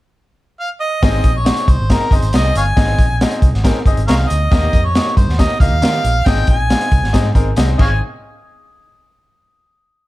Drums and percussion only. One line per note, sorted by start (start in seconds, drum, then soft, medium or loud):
1.03 kick loud
1.03 snare loud
1.03 closed hi-hat medium
1.24 kick medium
1.24 closed hi-hat medium
1.46 snare loud
1.46 closed hi-hat medium
1.57 closed hi-hat soft
1.68 kick medium
1.68 closed hi-hat medium
1.90 kick medium
1.90 snare loud
1.90 closed hi-hat medium
2.11 kick medium
2.11 closed hi-hat medium
2.22 closed hi-hat soft
2.33 snare loud
2.33 closed hi-hat medium
2.55 closed hi-hat medium
2.77 kick loud
2.77 snare loud
2.77 closed hi-hat medium
2.98 kick medium
2.98 closed hi-hat medium
3.21 snare loud
3.21 closed hi-hat medium
3.31 closed hi-hat soft
3.42 kick medium
3.42 closed hi-hat medium
3.54 snare soft
3.65 kick medium
3.65 snare loud
3.65 closed hi-hat medium
3.86 kick medium
3.86 closed hi-hat medium
3.97 closed hi-hat soft
4.08 snare loud
4.08 closed hi-hat medium
4.30 closed hi-hat medium
4.52 kick loud
4.52 snare loud
4.52 closed hi-hat medium
4.73 kick medium
4.73 closed hi-hat medium
4.95 snare loud
4.95 closed hi-hat medium
5.17 kick medium
5.17 closed hi-hat medium
5.29 snare soft
5.39 kick medium
5.39 snare loud
5.39 closed hi-hat medium
5.60 kick medium
5.60 closed hi-hat medium
5.82 snare loud
5.82 closed hi-hat medium
6.04 closed hi-hat medium
6.26 kick loud
6.26 snare loud
6.26 closed hi-hat medium
6.47 kick medium
6.47 closed hi-hat medium
6.70 snare loud
6.70 closed hi-hat medium
6.81 closed hi-hat soft
6.92 kick medium
6.92 closed hi-hat medium
7.04 snare soft
7.14 kick medium
7.14 snare loud
7.14 closed hi-hat medium
7.35 kick medium
7.35 closed hi-hat medium
7.56 snare loud
7.56 closed hi-hat medium
7.79 kick medium
7.79 crash medium